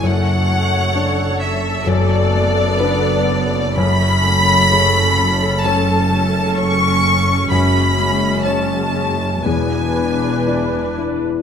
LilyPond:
<<
  \new Staff \with { instrumentName = "Violin section" } { \time 4/4 \key fis \minor \tempo 4 = 64 fis''4. e''8 d''2 | b''2 a''4 cis'''4 | b''4 a''4 gis''4. r8 | }
  \new Staff \with { instrumentName = "Viola section" } { \time 4/4 \key fis \minor << { a'1 | a'1 | gis2 b'2 | } \\ { cis''2 b2 | cis'1~ | cis'2 d'2 | } >> }
  \new Staff \with { instrumentName = "Grand piano" } { \time 4/4 \key fis \minor fis,4 <d' cis''>4 fis,4 <d' b'>4 | fis,4 cis4 <a cis' cis''>2 | fis,4 <cis' cis''>4 e,4 <e' d''>4 | }
  \new Staff \with { instrumentName = "Harp" } { \time 4/4 \key fis \minor <fis, d''>8 a8 cis''8 d'8 fis,8 a8 b'8 d'8 | fis,8 a8 cis''8 cis'8 cis8 a8 cis''8 cis'8 | fis,8 gis8 cis''8 cis'8 e,8 b8 d''8 e'8 | }
  \new Staff \with { instrumentName = "Cello section" } { \clef bass \time 4/4 \key fis \minor fis,2 fis,2~ | fis,1 | fis,2 e,2 | }
  \new Staff \with { instrumentName = "Double bass section" } { \clef bass \time 4/4 \key fis \minor fis,,2 fis,,2~ | fis,,1 | fis,,2 e,,2 | }
>>